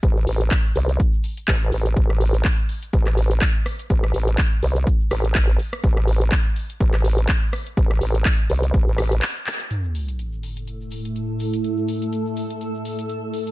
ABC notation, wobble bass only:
X:1
M:4/4
L:1/16
Q:"Swing 16ths" 1/4=124
K:Am
V:1 name="Wobble bass" clef=bass
A,,,2 A,,,2 z2 C,,2 z4 A,,,2 A,,,2 | A,,,4 z4 A,,,4 z4 | A,,,2 A,,,2 z2 C,,2 z2 A,,,4 z2 | A,,,4 z4 A,,,4 z4 |
A,,,2 A,,,2 z2 C,,2 A,,, A,,,3 z4 | z16 | z16 |]